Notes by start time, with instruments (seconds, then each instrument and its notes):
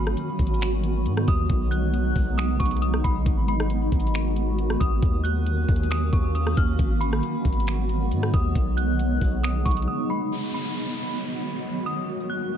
Already playing: 808-style bass G#1, ambient pad D#3 F#3 G#3 B3 F#4, synth bell B5
0.07 cross-stick
0.17 closed hi-hat
0.39 808-style bass G#1, kick, closed hi-hat
0.47 closed hi-hat
0.54 closed hi-hat
0.61 finger snap, closed hi-hat
0.83 closed hi-hat
1.05 808-style bass G#2, closed hi-hat
1.17 cross-stick
1.28 808-style bass D#2, synth bell D#6, kick, closed hi-hat
1.50 808-style bass B1, ambient pad C#3 D#4, kick, closed hi-hat
1.71 synth bell F#6, closed hi-hat
1.94 closed hi-hat
2.16 808-style bass B1, kick, open hi-hat
2.38 synth bell D#6, finger snap, closed hi-hat
2.60 808-style bass B1, synth bell C#6, kick, closed hi-hat
2.66 closed hi-hat
2.71 closed hi-hat
2.77 closed hi-hat
2.82 synth bell D#6, closed hi-hat
2.94 cross-stick
3.04 808-style bass B1, synth bell B5, kick, closed hi-hat
3.26 808-style bass G#1, ambient pad D#3 F#4, kick, closed hi-hat
3.48 synth bell B5, closed hi-hat
3.60 cross-stick
3.70 closed hi-hat
3.92 808-style bass G#1, kick, closed hi-hat
4.00 closed hi-hat
4.07 closed hi-hat
4.14 finger snap, closed hi-hat
4.36 closed hi-hat
4.59 closed hi-hat
4.70 cross-stick
4.80 808-style bass G#1, synth bell D#6, kick, closed hi-hat
5.02 808-style bass D#2, ambient pad A#3 C#4 F#4, kick, closed hi-hat
5.24 synth bell F#6, closed hi-hat
5.46 closed hi-hat
5.69 808-style bass D#2, kick, closed hi-hat
5.76 closed hi-hat
5.83 closed hi-hat
5.91 synth bell D#6, finger snap, closed hi-hat
6.13 808-style bass D#2, synth bell C#6, kick, closed hi-hat
6.35 synth bell D#6, closed hi-hat
6.47 cross-stick
6.57 808-style bass D#2, synth bell F6, kick, closed hi-hat
6.79 808-style bass G#1, ambient pad F#3 G#3 B3, kick, closed hi-hat
7.01 synth bell B5, closed hi-hat
7.13 cross-stick
7.23 closed hi-hat
7.45 808-style bass G#1, kick, closed hi-hat
7.53 closed hi-hat
7.60 closed hi-hat
7.67 finger snap, closed hi-hat
7.89 closed hi-hat
8.11 808-style bass G#2, closed hi-hat
8.23 cross-stick
8.34 808-style bass D#2, synth bell D#6, kick, closed hi-hat
8.55 808-style bass B1, ambient pad C#3 G#3 D#4, kick, closed hi-hat
8.77 synth bell F#6, closed hi-hat
8.99 closed hi-hat
9.21 808-style bass B1, kick, open hi-hat
9.43 synth bell D#6, finger snap, closed hi-hat
9.65 808-style bass B1, synth bell C#6, kick, closed hi-hat
9.71 closed hi-hat
9.77 closed hi-hat
9.82 closed hi-hat
9.88 synth bell D#6
10.10 synth bell B5
10.32 ambient pad D#3 F#3 G#3 B3 F#4, downlifter
10.54 synth bell B5
11.86 synth bell D#6
12.08 ambient pad A#3 C#4
12.30 synth bell F#6